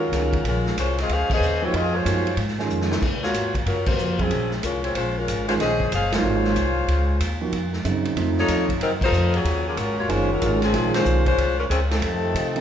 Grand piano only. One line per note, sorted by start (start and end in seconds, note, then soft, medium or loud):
0.14 0.32 D#3 medium
0.14 0.32 G#3 soft
0.14 0.32 C#4 medium
0.14 0.32 F#4 medium
1.62 1.72 F3 medium
1.62 1.73 A#3 medium
1.62 1.73 D#4 medium
1.62 1.73 F#4 medium
2.05 2.24 F3 medium
2.05 2.24 A#3 medium
2.05 2.24 D#4 medium
2.05 2.24 F#4 medium
2.59 3.00 D#3 medium
2.59 3.00 G#3 medium
2.59 3.00 C#4 medium
2.59 3.00 F4 medium
4.21 4.30 F#3 medium
4.21 4.30 C4 medium
4.21 4.31 F4 medium
4.21 4.31 G#4 medium
5.49 5.59 D#3 medium
5.49 5.59 G#3 medium
5.49 5.59 C#4 medium
5.49 5.59 F4 medium
6.13 6.54 F#3 medium
6.13 6.54 A#3 medium
6.13 6.54 D#4 medium
6.13 6.54 F4 medium
7.41 7.51 F3 medium
7.41 7.51 A#3 medium
7.41 7.52 D#4 medium
7.41 7.52 F#4 medium
7.85 8.17 C#3 medium
7.85 8.17 F#3 medium
7.85 8.16 C4 medium
7.85 8.16 D#4 medium
8.16 8.65 F3 medium
8.16 8.65 A3 medium
8.16 8.66 C4 medium
8.16 8.66 D#4 medium
10.08 10.27 D#3 medium
10.08 10.28 G#3 medium
10.08 10.28 C#4 medium
10.08 10.28 F4 medium
10.41 10.60 D#3 medium
10.41 10.60 G#3 medium
10.41 10.60 C#4 medium
10.41 10.61 F4 medium
10.73 11.22 D#3 medium
10.73 11.22 G#3 medium
10.73 11.22 C#4 medium
10.73 11.23 F4 medium
12.56 12.61 F3 medium
12.56 12.61 A3 medium
12.56 12.61 C4 medium
12.56 12.61 D#4 medium